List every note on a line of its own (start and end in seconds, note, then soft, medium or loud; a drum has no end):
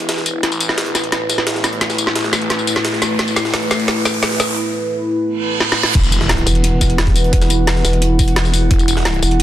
0.00 0.42 E1 loud
0.00 5.91 E4 medium
0.00 5.91 B4 medium
0.00 0.39 F#5 medium
0.00 closed hi-hat soft
0.09 snare loud
0.09 closed hi-hat medium
0.17 snare soft
0.26 closed hi-hat medium
0.26 tambourine medium
0.43 0.94 A1 loud
0.43 5.91 A3 medium
0.43 snare soft
0.43 closed hi-hat medium
0.43 riser medium
0.52 closed hi-hat soft
0.52 tambourine soft
0.60 closed hi-hat medium
0.60 tambourine medium
0.69 snare soft
0.69 snare medium
0.78 snare loud
0.78 closed hi-hat medium
0.86 closed hi-hat soft
0.95 1.80 A1 loud
0.95 snare medium
0.95 closed hi-hat medium
0.95 tambourine medium
1.04 closed hi-hat soft
1.12 snare medium
1.12 closed hi-hat medium
1.29 snare soft
1.29 closed hi-hat medium
1.29 tambourine medium
1.38 snare soft
1.38 closed hi-hat soft
1.47 snare loud
1.47 closed hi-hat medium
1.55 snare soft
1.64 snare medium
1.64 closed hi-hat medium
1.64 tambourine medium
1.73 closed hi-hat soft
1.81 2.31 A1 loud
1.81 snare medium
1.81 closed hi-hat medium
1.90 snare soft
1.90 closed hi-hat soft
1.90 tambourine soft
1.98 closed hi-hat medium
1.98 tambourine medium
2.07 snare medium
2.16 snare loud
2.16 closed hi-hat medium
2.24 snare soft
2.33 3.18 A1 loud
2.33 snare medium
2.33 closed hi-hat medium
2.33 tambourine medium
2.41 closed hi-hat soft
2.50 snare medium
2.50 closed hi-hat medium
2.59 tambourine soft
2.67 closed hi-hat medium
2.67 open hi-hat medium
2.67 tambourine medium
2.76 snare medium
2.76 closed hi-hat soft
2.85 snare loud
2.85 closed hi-hat medium
2.93 snare soft
3.02 snare medium
3.02 closed hi-hat medium
3.02 tambourine medium
3.19 3.69 A1 loud
3.19 snare medium
3.19 closed hi-hat medium
3.28 closed hi-hat soft
3.28 tambourine soft
3.36 snare medium
3.36 closed hi-hat medium
3.36 tambourine medium
3.45 snare medium
3.54 snare medium
3.54 snare loud
3.54 closed hi-hat medium
3.62 closed hi-hat soft
3.71 4.56 A1 loud
3.71 snare medium
3.71 closed hi-hat medium
3.71 tambourine medium
3.80 closed hi-hat soft
3.88 snare medium
3.88 closed hi-hat medium
4.05 snare medium
4.05 snare soft
4.05 closed hi-hat medium
4.05 tambourine medium
4.14 closed hi-hat soft
4.23 snare loud
4.23 snare medium
4.23 closed hi-hat medium
4.31 snare soft
4.40 snare medium
4.40 closed hi-hat medium
4.40 tambourine medium
4.48 closed hi-hat soft
5.26 reverse cymbal medium
5.60 snare medium
5.72 snare medium
5.83 snare loud
5.95 6.45 E1 loud
5.95 9.43 E4 medium
5.95 8.68 B4 medium
5.95 9.43 F#5 medium
5.95 kick loud
5.95 closed hi-hat medium
5.95 crash loud
5.95 impact medium
6.04 closed hi-hat soft
6.04 tambourine soft
6.12 closed hi-hat medium
6.12 tambourine medium
6.21 snare medium
6.29 snare loud
6.29 closed hi-hat loud
6.29 closed hi-hat medium
6.38 closed hi-hat soft
6.47 7.32 E1 loud
6.47 closed hi-hat medium
6.47 open hi-hat medium
6.47 tambourine medium
6.55 closed hi-hat soft
6.64 closed hi-hat loud
6.64 closed hi-hat medium
6.81 kick medium
6.81 snare soft
6.81 closed hi-hat medium
6.81 tambourine medium
6.90 closed hi-hat soft
6.98 snare loud
6.98 closed hi-hat medium
7.07 kick loud
7.07 snare soft
7.16 closed hi-hat medium
7.16 open hi-hat medium
7.16 tambourine medium
7.24 closed hi-hat soft
7.33 7.83 E1 medium
7.33 kick loud
7.33 closed hi-hat loud
7.33 closed hi-hat medium
7.41 snare soft
7.41 closed hi-hat soft
7.41 tambourine soft
7.50 closed hi-hat medium
7.50 tambourine medium
7.67 snare loud
7.67 closed hi-hat loud
7.67 closed hi-hat medium
7.76 snare soft
7.85 8.69 E1 loud
7.85 snare medium
7.85 closed hi-hat medium
7.85 open hi-hat medium
7.85 tambourine medium
7.93 closed hi-hat soft
8.02 closed hi-hat loud
8.02 closed hi-hat medium
8.19 kick loud
8.19 closed hi-hat medium
8.19 open hi-hat medium
8.19 tambourine medium
8.28 closed hi-hat soft
8.36 snare loud
8.36 closed hi-hat loud
8.36 closed hi-hat medium
8.45 snare soft
8.45 tambourine soft
8.54 closed hi-hat medium
8.54 open hi-hat medium
8.54 tambourine medium
8.71 9.21 E1 loud
8.71 9.43 A4 medium
8.71 kick loud
8.71 closed hi-hat loud
8.71 closed hi-hat medium
8.79 closed hi-hat soft
8.79 tambourine soft
8.88 closed hi-hat medium
8.88 tambourine medium
8.97 snare medium
9.05 snare loud
9.05 closed hi-hat medium
9.14 closed hi-hat soft
9.23 9.43 E1 loud
9.23 closed hi-hat medium
9.23 open hi-hat medium
9.23 tambourine medium
9.31 closed hi-hat soft
9.40 closed hi-hat medium